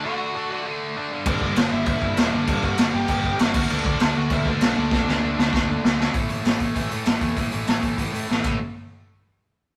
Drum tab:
CC |--------|x-x-x-x-|x-x-x-xx|x-x-x-x-|
HH |--------|--------|--------|--------|
SD |--------|--o---o-|--o---o-|--o---o-|
BD |--------|oo--oo--|oo--oo-o|-o--oo--|

CC |--------|--------|-------x|--------|
HH |--------|oooooooo|oooooo--|--------|
SD |oo-oo-oo|--o---o-|--o---o-|--------|
BD |o---o---|o--oo--o|o--oo--o|--------|